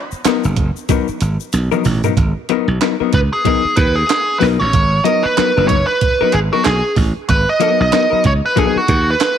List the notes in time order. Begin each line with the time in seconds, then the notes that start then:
0.11 muted slap bass stroke, shaker
0.25 F#3 B3 D#4 A#4, muted slap bass stroke, snare, clap, closed hi-hat, shaker
0.44 F#1, shaker
0.56 kick, closed hi-hat
0.76 shaker
0.89 F#3 B3 D#4 A#4, kick, closed hi-hat, shaker
1.08 muted slap bass stroke, shaker
1.21 G#1, closed hi-hat, shaker
1.40 shaker
1.53 B1, snare, closed hi-hat, shaker
1.72 F#3 B3 D#4 A#4, high tom, shaker
1.84 A1, mid tom, open hi-hat, shaker
2.04 F#3 B3 D#4 A#4, floor tom, shaker
2.17 G#1, kick, closed hi-hat
2.49 F#3 B3 D#4 A#4, closed hi-hat
2.68 B1
2.81 F#3 B3 D#4 A#4, snare, clap, closed hi-hat
3.00 F#3 B3 D#4 A#4, muted slap bass stroke
3.13 C#2 B4, kick, closed hi-hat
3.33 G#4
3.45 F#3 B3 D#4 A#4, kick, closed hi-hat
3.65 muted slap bass stroke
3.77 D#2 B4, kick, closed hi-hat
3.96 G#4
4.07 G#4, snare, clap, closed hi-hat
4.39 B1 F#3 B3 D#4 A#4 B4, open hi-hat
4.60 A1 C#5
4.73 G#1, kick, closed hi-hat
5.04 F#3 B3 D#4 A#4 D#5, closed hi-hat
5.23 B4, muted slap bass stroke
5.37 F#3 B3 D#4 A#4, muted slap bass stroke, snare, clap, closed hi-hat
5.57 F#1 F#3 B3 D#4 B4
5.68 C#5, kick, closed hi-hat
5.87 B4
6.01 kick, closed hi-hat
6.21 F#3 B3 D#4 A#4, muted slap bass stroke
6.32 G#1 G#4, closed hi-hat
6.53 F#3 B3 D#4 F#4 A#4
6.64 B1 G#4, snare, clap, closed hi-hat
6.96 A1, kick, open hi-hat
7.29 G#1 B4, kick, closed hi-hat
7.49 D#5
7.60 F#3 B3 D#4 A#4, closed hi-hat
7.80 B1 D#5
7.92 F#3 B3 D#4 A#4, snare, clap, closed hi-hat
8.10 F#3 B3 D#4 A#4, muted slap bass stroke
8.24 C#2 C#5, kick, closed hi-hat
8.46 B4
8.56 F#3 B3 D#4 G#4 A#4, kick, closed hi-hat
8.76 F#4, muted slap bass stroke
8.88 D#2, kick, closed hi-hat
9.10 B4
9.20 snare, clap, closed hi-hat